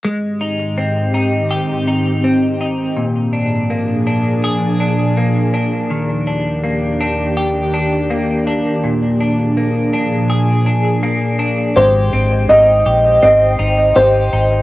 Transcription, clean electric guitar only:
\new Staff \with { instrumentName = "Clean electric guitar" } { \time 4/4 \key aes \lydian \tempo 4 = 82 aes8 ees'8 c'8 ees'8 g'8 ees'8 c'8 ees'8 | bes,8 d'8 bes8 d'8 aes'8 d'8 bes8 d'8 | ees8 d'8 bes8 d'8 g'8 d'8 bes8 d'8 | bes,8 d'8 bes8 d'8 aes'8 d'8 bes8 d'8 |
<aes g'>8 c'8 ees'8 g'8 c'8 ees'8 g'8 ees'8 | }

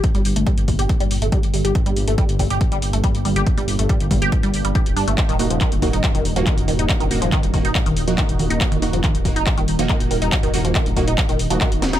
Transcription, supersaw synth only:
\new Staff \with { instrumentName = "Supersaw synth" } { \time 4/4 \key ees \lydian \tempo 4 = 140 r1 | r1 | r1 | r8 <bes ees' ges'>8 r8 <bes ees' ges'>16 r4 <bes ees' ges'>4~ <bes ees' ges'>16~ |
<bes ees' ges'>8 <bes ees' ges'>8 r8 <bes ees' ges'>16 r4 <bes ees' ges'>4~ <bes ees' ges'>16~ | <bes ees' ges'>8 <bes ees' ges'>8 r8 <bes ees' ges'>16 r4 <bes ees' ges'>4~ <bes ees' ges'>16~ | <bes ees' ges'>8 <bes ees' ges'>8 r8 <bes ees' ges'>16 r4 <bes ees' ges'>4~ <bes ees' ges'>16 | }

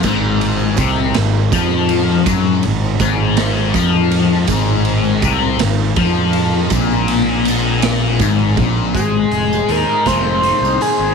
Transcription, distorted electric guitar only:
\new Staff \with { instrumentName = "Distorted electric guitar" } { \clef bass \time 6/8 \key aes \major \tempo 4. = 54 aes,4 c8 aes,8 f4 | ges8 aes,8 aes,4 f4 | aes,4 c8 aes,8 f4 | bes,2 aes,8 bes,8 |
aes8 aes'8 ees'8 c'8 ees'8 aes'8 | }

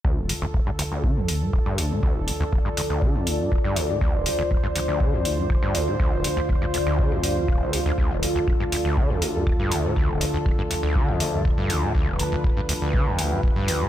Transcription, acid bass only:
\new Staff \with { instrumentName = "Acid bass" } { \clef bass \time 4/4 \key c \lydian \tempo 4 = 121 d,16 d,,16 d,16 d,16 d,,16 g,16 d,16 d,16 d16 f,16 d,16 g,16 d,,16 g,16 d,16 a,16 | d,16 d,,16 d,16 d,16 d,,16 g,16 d,16 d,16 d16 f,16 d,16 g,16 d,,16 g,16 d,16 a,16 | d,16 d,,16 d,16 d,16 d,,16 g,16 d,16 d,16 d16 f,16 d,16 g,16 d,,16 g,16 d,16 a,16 | d,16 d,,16 d,16 d,16 d,,16 g,16 d,16 d,16 d16 f,16 g,16 e,16 d,,16 d,16 c,16 d,16 |
d,16 d,,16 d,16 d,16 d,,16 g,16 d,16 d,16 d16 f,16 d,16 g,16 d,,16 g,16 d,16 a,16 | d,16 d,,16 d,16 d,16 d,,16 g,16 d,16 d,16 d16 f,16 d,16 g,16 d,,16 g,16 d,16 a,16 | d,16 d,,16 d,16 d,16 d,,16 g,16 d,16 d,16 d16 f,16 d,16 g,16 d,,16 g,16 d,16 a,16 | }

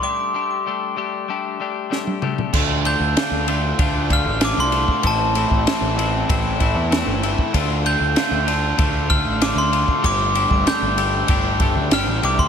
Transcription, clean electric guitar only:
\new Staff \with { instrumentName = "Clean electric guitar" } { \time 4/4 \key d \minor \tempo 4 = 96 <g a d' g'>8 <g a d' g'>8 <g a d' g'>8 <g a d' g'>8 <g a d' g'>8 <g a d' g'>8 <g a d' g'>8 <g a d' g'>8 | <d a d' f'>8 <d a d' f'>8 <d a d' f'>8 <d a d' f'>8 <d a d' f'>8 <d a d' f'>8 <d a d' f'>8 <d a d' f'>8 | <a, e a c' e'>8 <a, e a c' e'>8 <a, e a c' e'>8 <a, e a c' e'>8 <a, e a c' e'>8 <a, e a c' e'>8 <a, e a c' e'>8 <a, e a c' e'>8 | <d a d' f'>8 <d a d' f'>8 <d a d' f'>8 <d a d' f'>8 <d a d' f'>8 <d a d' f'>8 <d a d' f'>8 <d a d' f'>8 |
<g a d' g'>8 <g a d' g'>8 <g a d' g'>8 <g a d' g'>8 <g a d' g'>8 <g a d' g'>8 <g a d' g'>8 <g a d' g'>8 | }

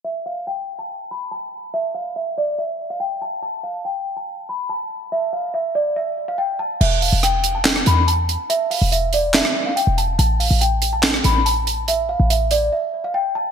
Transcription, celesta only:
\new Staff \with { instrumentName = "Celesta" } { \time 4/4 \key e \phrygian \tempo 4 = 142 e''8 f''8 g''8. a''8. b''8 a''4 | e''8 f''8 e''8 d''8 e''8. f''16 g''8 a''8 | a''8 f''8 g''8. a''8. b''8 a''4 | e''8 f''8 e''8 d''8 e''8. f''16 g''8 a''8 |
e''8 f''8 g''8. a''8. b''8 a''4 | e''8 f''8 e''8 d''8 e''8. f''16 g''8 a''8 | a''8 f''8 g''8. a''8. b''8 a''4 | e''8 f''8 e''8 d''8 e''8. f''16 g''8 a''8 | }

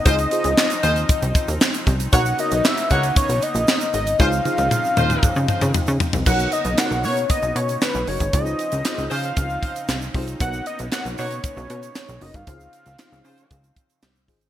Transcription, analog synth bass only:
\new Staff \with { instrumentName = "Analog synth bass" } { \clef bass \time 4/4 \key cis \dorian \tempo 4 = 116 cis,8 r16 cis,16 r8 dis,8 r16 bis,,16 r16 dis,16 r8 bis,,8 | b,,8 r16 b,,16 r8 cis,8 r16 b,,16 r16 ais,,16 r8 gis,,8 | cis,8 r16 cis,16 r8 dis,8 r16 cis16 r16 cis16 r16 cis16 r16 bis,,16 | b,,8 r16 b,,16 r16 b,,16 b,8 r16 b,,16 b,8 r16 b,,16 fis,,16 gis,,16 |
cis,8 r16 cis,16 r16 cis,16 cis8 cis,8 r8 bis,,8 bis,,8 | b,,8 r16 b,,16 r16 b,,16 b,8 r16 b,,16 b,8 r16 b,,16 fis,,16 gis,,16 | cis,8 r16 cis,16 r16 cis,16 cis8 cis,8 r8 bis,,8 gis,,8 | }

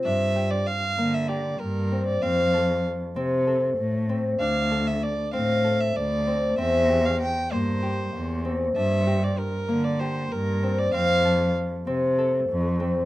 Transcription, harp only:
\new Staff \with { instrumentName = "Harp" } { \time 7/8 \key g \dorian \tempo 4 = 96 d'8 g'4 bes8 g'4 c'8 | c'8 a'4 c'8 a'4 c'8 | d'8 a'4 c'8 a'4 c'8 | c'8 g'4 bes8 g'4 c'8 |
d'8 g'4 bes8 g'4 c'8 | c'8 a'4 c'8 a'4 c'8 | }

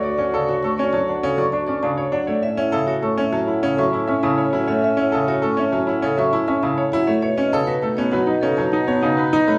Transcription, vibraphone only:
\new Staff \with { instrumentName = "Vibraphone" } { \time 4/4 \key a \mixolydian \tempo 4 = 100 d''16 fis''16 d''16 cis''16 cis'''16 d''16 a''16 fis''16 a'16 cis'''16 a''16 cis'''16 a''16 cis''16 fis''16 d''16 | e''16 fis''16 e''16 cis''16 cis'''16 e''16 a''16 fis''16 a'16 cis'''16 a''16 cis'''16 a''16 cis''16 fis''16 e''16 | e''16 fis''16 e''16 cis''16 cis'''16 e''16 a''16 fis''16 a'16 cis'''16 a''16 cis'''16 a''16 cis''16 fis''16 e''16 | cis''16 dis''16 cis''16 b'16 a''16 cis''16 fis''16 dis''16 a'16 a''16 fis''16 a''16 fis''16 b'16 dis''16 cis''16 | }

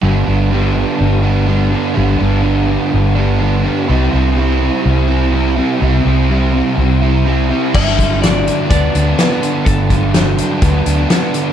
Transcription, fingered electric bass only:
\new Staff \with { instrumentName = "Fingered electric bass" } { \clef bass \time 4/4 \key g \major \tempo 4 = 125 g,,8 g,,4. g,,2 | g,,8 g,,4. g,,2 | c,8 c,4. c,2 | c,8 c,4. c,2 |
g,,2 d,8 d,8 r4 | g,,2 d,8 d,8 r4 | }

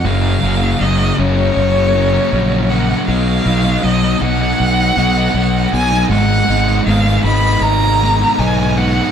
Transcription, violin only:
\new Staff \with { instrumentName = "Violin" } { \time 4/4 \key fis \major \tempo 4 = 79 eis''4 dis''8 cis''2 fis''8 | eis''4 dis''8 fis''2 gis''8 | fis''4 eis''8 b''8 ais''4 gis''8 fis''8 | }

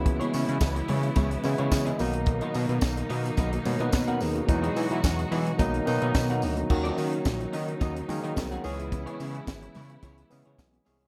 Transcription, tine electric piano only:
<<
  \new Staff \with { instrumentName = "Tine electric piano" } { \time 4/4 \key cis \dorian \tempo 4 = 108 r1 | r2 r8 cis''16 <dis' b'>8 <cis' ais'>16 <b gis'>16 <ais fis'>16~ | <ais fis'>16 r2. r8. | r1 |
r1 | }
  \new Staff \with { instrumentName = "Tine electric piano" } { \clef bass \time 4/4 \key cis \dorian <cis e gis b e'>4~ <cis e gis b e'>16 r4 r16 <cis e gis b e'>4 <b, dis fis ais dis'>8~ | <b, dis fis ais dis'>4~ <b, dis fis ais dis'>16 r2 r8. | <b, e fis gis dis'>4.~ <b, e fis gis dis'>16 r16 <b, dis fis ais dis'>8 <b, dis fis ais dis'>4. | <dis fis ais cis' fis'>4.~ <dis fis ais cis' fis'>16 r8. <dis fis ais cis' gis'>4 <e gis b cis' gis'>8~ |
<e gis b cis' gis'>4~ <e gis b cis' gis'>16 r4 r16 <e gis b cis' gis'>4 <e gis b cis' gis'>8 | }
>>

